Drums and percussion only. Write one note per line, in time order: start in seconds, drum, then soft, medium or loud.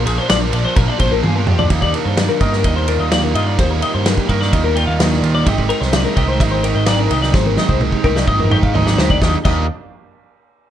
0.07 ride medium
0.30 snare loud
0.30 ride loud
0.53 ride medium
0.76 kick loud
0.76 ride loud
0.99 kick medium
0.99 ride medium
1.23 high tom medium
1.47 mid tom medium
1.59 floor tom medium
1.70 kick loud
1.70 ride medium
1.82 kick medium
1.94 ride medium
2.17 snare loud
2.17 ride loud
2.41 kick medium
2.41 ride medium
2.53 snare soft
2.64 kick medium
2.64 ride loud
2.88 ride medium
3.12 snare loud
3.12 ride loud
3.35 ride medium
3.59 kick loud
3.59 ride medium
3.82 ride medium
4.06 snare loud
4.06 ride loud
4.18 kick medium
4.29 kick medium
4.29 ride medium
4.42 snare soft
4.53 kick medium
4.53 ride medium
4.76 ride medium
5.00 snare loud
5.00 ride medium
5.12 snare soft
5.23 ride medium
5.46 kick loud
5.46 ride medium
5.58 kick medium
5.70 ride medium
5.82 snare soft
5.93 snare loud
5.93 ride medium
6.17 kick medium
6.17 ride medium
6.40 kick medium
6.40 ride loud
6.64 ride medium
6.86 snare loud
6.86 ride loud
7.11 ride medium
7.23 snare soft
7.34 kick loud
7.34 snare medium
7.46 high tom medium
7.57 snare medium
7.69 kick medium
7.81 mid tom medium
7.92 kick medium
8.04 kick medium
8.16 snare medium
8.28 kick medium
8.39 mid tom medium
8.51 mid tom medium
8.63 kick medium
8.75 floor tom medium
8.87 snare medium
8.98 snare loud
9.10 kick medium
9.22 kick loud
9.22 snare medium
9.45 kick loud
9.45 crash medium